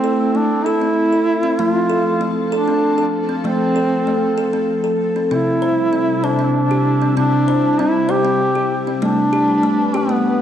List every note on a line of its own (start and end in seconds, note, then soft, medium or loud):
0.00 0.34 A3 medium
0.00 1.55 A3 medium
0.00 0.38 C4 medium
0.00 5.27 C4 medium
0.00 1.55 E4 medium
0.00 0.35 A4 medium
0.35 0.66 A3 medium
0.35 0.68 D4 medium
0.66 1.62 E4 medium
0.66 0.82 A4 medium
0.81 1.13 C4 medium
1.12 1.44 A4 soft
1.43 1.59 C4 medium
1.59 5.27 F3 medium
1.59 3.42 F3 medium
1.59 1.90 A3 medium
1.59 2.26 F4 medium
1.59 5.27 A4 medium
1.90 2.21 A4 medium
2.21 2.52 A3 medium
2.52 3.11 D4 medium
2.52 2.68 A4 medium
2.68 2.99 C4 medium
2.98 3.30 A4 medium
3.29 3.45 C4 medium
3.44 5.27 F3 medium
3.44 3.76 A3 medium
3.44 4.65 C4 medium
3.76 4.07 A4 medium
4.07 4.38 A3 medium
4.38 4.53 A4 medium
4.53 4.85 C4 medium
4.84 5.15 A4 medium
5.16 5.30 C4 medium
5.31 7.13 C3 medium
5.31 8.99 C3 medium
5.31 10.42 G3 medium
5.31 5.62 C4 medium
5.31 6.26 E4 medium
5.31 8.99 E4 medium
5.62 5.93 C5 medium
5.93 6.24 C4 medium
6.24 7.16 D4 medium
6.24 6.39 C5 medium
6.39 6.70 C4 medium
6.71 7.02 G4 medium
7.01 7.16 C4 medium
7.17 8.98 C3 medium
7.17 7.48 C4 medium
7.17 7.82 D4 medium
7.48 7.79 C5 medium
7.79 8.10 C4 medium
7.79 8.12 E4 medium
8.09 8.79 G4 medium
8.09 8.25 C5 medium
8.24 8.56 C4 medium
8.55 8.87 G4 medium
8.87 9.02 C4 medium
9.02 10.42 G3 medium
9.02 9.33 A3 medium
9.02 10.42 D4 medium
9.02 9.98 D4 medium
9.02 10.42 B4 medium
9.33 9.64 G4 medium
9.64 9.95 A3 medium
9.94 10.42 B3 medium
9.94 10.10 G4 medium
10.09 10.41 A3 medium